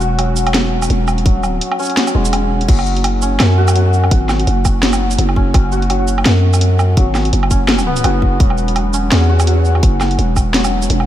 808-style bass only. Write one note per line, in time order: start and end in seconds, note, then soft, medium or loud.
0.00 0.89 E1 medium
0.90 1.40 E1 medium
1.40 1.60 D#1 medium
2.15 2.67 E1 loud
2.69 3.39 F#1 loud
3.40 4.10 F#2 loud
4.11 4.46 G#1 loud
4.47 5.17 F#1 loud
5.19 5.53 F#1 loud
5.54 6.24 F#1 medium
6.26 6.96 F#2 loud
6.97 7.32 G#1 loud
7.33 8.03 F#1 loud
8.04 8.39 F#1 loud
8.40 9.10 E1 loud
9.12 9.82 E2 loud
9.83 10.17 F#1 loud
10.19 10.89 E1 loud
10.90 11.06 E1 medium